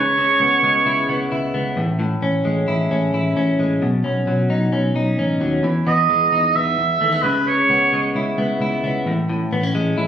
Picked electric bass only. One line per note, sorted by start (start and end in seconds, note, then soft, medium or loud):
0.00 0.32 C#2 medium
0.40 0.59 C#2 medium
0.63 0.82 C#2 medium
0.86 1.05 C#2 medium
1.09 1.27 C#2 medium
1.32 1.50 C#2 medium
1.55 1.73 C#2 medium
1.77 2.14 A1 medium
2.22 2.41 A1 medium
2.46 2.64 A1 medium
2.69 2.87 A1 medium
2.91 3.10 A1 medium
3.14 3.32 A1 medium
3.37 3.55 A1 medium
3.59 3.78 A1 medium
3.82 4.01 B1 medium
4.05 4.23 B1 medium
4.27 4.46 B1 medium
4.50 4.69 B1 medium
4.73 4.92 B1 medium
4.95 5.14 B1 medium
5.18 5.37 A1 medium
5.41 5.60 D#2 medium
5.63 5.82 E2 medium
5.87 6.06 E2 medium
6.10 6.28 E2 medium
6.33 6.51 E2 medium
6.56 6.74 E2 loud
6.78 6.97 E2 medium
7.01 7.20 D#2 medium
7.24 7.61 C#2 medium
7.69 7.88 C#2 medium
7.92 8.11 C#2 medium
8.15 8.34 C#2 medium
8.38 8.57 C#2 medium
8.60 8.79 C#2 medium
8.84 9.02 C#2 medium
9.06 9.44 A1 medium
9.52 9.71 A1 medium
9.75 9.93 A1 medium
9.97 10.07 A1 medium